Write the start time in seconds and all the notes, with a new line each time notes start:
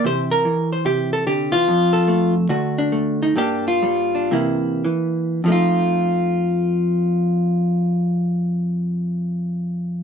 0.04 C3 E3 G4 C5
0.31 A#4
0.45 E3
0.72 C5
0.85 C3 G4
1.13 A4
1.27 D3 G4
1.52 E3 F4
1.68 F2
1.93 A4
2.08 A3
2.49 D3 A3 F#4
2.78 D4
2.92 A3
3.23 D#4
3.36 G2 G3 A#3 D4 G4
3.68 F4
3.83 G3
4.15 D4
4.31 C3 E3 A#3 E4
4.85 E3
5.44 F2 F3 A3
5.50 D#4 F4